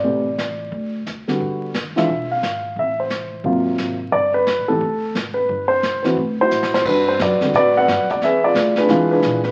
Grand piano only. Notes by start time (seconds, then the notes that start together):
Already playing: D5
0.04 C3 A3 B3 G4
1.28 D3 G3 B3 F#4
1.96 E3 G#3 D4 F4 E5
2.31 F5
2.79 E5
3.00 C5
3.45 C3 F#3 A#3 F4
4.12 D5
4.34 B4
4.68 E3 A3 B3 G4 A4
5.34 B4
5.68 C5
6.03 E3 B3 C4 F#4 B4
6.41 E4 F#4 C5
6.74 C5
6.87 D4 F#4 B4
7.09 C5
7.22 F#4 B4 D5
7.41 D3 G3 B3 F#4
7.56 F#4 B4 D5
7.77 B4 D5 F#5
8.11 D5
8.24 G#4 B4 E5
8.44 F4 G#4 D5
8.78 D4 G#4 B4
8.89 E3 G#3 D4 F4
9.11 D4 G#4 B4
9.45 B4